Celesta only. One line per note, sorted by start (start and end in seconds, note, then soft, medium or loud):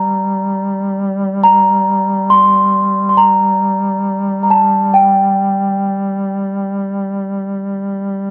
0.00 0.95 A#5 medium
1.43 2.32 A#5 medium
2.30 3.08 C6 medium
3.09 3.16 C6 medium
3.17 4.42 A#5 medium
4.43 4.49 A#5 soft
4.50 4.96 A5 medium
4.94 7.70 G5 medium